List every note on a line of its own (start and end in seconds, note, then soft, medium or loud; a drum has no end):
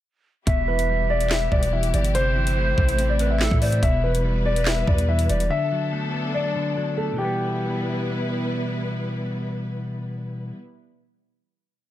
0.47 1.48 E1 loud
0.47 1.50 B2 loud
0.47 2.13 G3 medium
0.47 2.13 B3 medium
0.47 5.46 E4 medium
0.47 3.79 G4 medium
0.47 0.65 E5 medium
0.47 1.69 E5 loud
0.47 kick loud
0.47 closed hi-hat medium
0.68 1.72 E3 medium
0.68 1.07 B4 medium
0.79 closed hi-hat medium
0.90 1.93 G3 medium
1.10 2.15 B3 medium
1.10 1.28 D5 medium
1.21 closed hi-hat medium
1.30 2.15 B4 medium
1.30 1.49 E5 medium
1.30 snare loud
1.30 clap loud
1.51 1.92 E1 loud
1.51 2.15 B2 medium
1.51 1.70 D5 medium
1.51 kick medium
1.63 closed hi-hat medium
1.73 2.15 E3 medium
1.73 1.91 E5 medium
1.83 closed hi-hat medium
1.94 2.74 G1 loud
1.94 2.15 G3 medium
1.94 2.12 D5 medium
1.94 closed hi-hat medium
2.04 closed hi-hat medium
2.15 3.19 C3 loud
2.15 3.81 A3 medium
2.15 3.81 C4 medium
2.15 3.05 C5 loud
2.15 3.16 C5 loud
2.15 closed hi-hat medium
2.36 3.40 E3 medium
2.47 closed hi-hat medium
2.57 3.61 A3 medium
2.78 3.48 A1 loud
2.78 kick loud
2.89 closed hi-hat medium
2.98 3.83 C4 loud
2.98 closed hi-hat medium
3.09 3.28 D5 medium
3.19 3.83 C3 medium
3.19 3.40 B4 medium
3.19 closed hi-hat medium
3.30 3.60 E5 medium
3.40 3.83 E3 medium
3.40 3.61 A4 medium
3.40 snare loud
3.40 clap medium
3.51 3.81 A2 loud
3.51 kick loud
3.62 3.83 A3 medium
3.62 3.82 C5 medium
3.62 3.80 D5 medium
3.62 open hi-hat medium
3.72 closed hi-hat medium
3.83 4.84 E1 loud
3.83 4.87 B2 loud
3.83 5.49 G3 medium
3.83 5.49 B3 medium
3.83 5.49 B4 loud
3.83 4.01 E5 medium
3.83 kick loud
3.83 closed hi-hat medium
4.04 5.08 E3 medium
4.04 4.43 B4 medium
4.15 closed hi-hat medium
4.25 5.28 G3 medium
4.45 5.50 B3 medium
4.45 4.64 D5 medium
4.56 closed hi-hat medium
4.66 5.51 B4 loud
4.66 4.85 E5 medium
4.66 snare loud
4.66 clap loud
4.87 5.28 E2 loud
4.87 5.49 B2 medium
4.87 5.06 D5 medium
4.87 kick medium
4.98 closed hi-hat medium
5.09 5.51 E3 medium
5.09 5.27 E5 medium
5.19 closed hi-hat medium
5.29 5.50 E1 loud
5.29 5.50 G3 medium
5.29 5.48 D5 medium
5.29 closed hi-hat medium
5.40 closed hi-hat medium
5.50 6.54 D3 loud
5.50 7.17 F#3 medium
5.50 7.17 B3 medium
5.50 7.17 D4 medium
5.50 7.17 A4 medium
5.50 6.30 E5 loud
5.72 6.76 F#3 medium
5.92 6.96 A3 medium
6.13 6.34 B3 medium
6.34 7.18 D4 loud
6.34 6.94 D5 medium
6.56 7.12 D3 medium
6.77 7.16 F#3 medium
6.97 7.18 A3 medium
6.97 7.16 A4 medium
7.12 10.50 B2 medium
7.12 10.54 E3 medium
7.18 10.56 G3 medium
7.18 10.58 G3 medium
7.18 10.56 B3 medium
7.18 10.56 E4 medium
7.18 8.40 G4 medium
7.18 10.56 B4 medium
7.24 10.62 B3 loud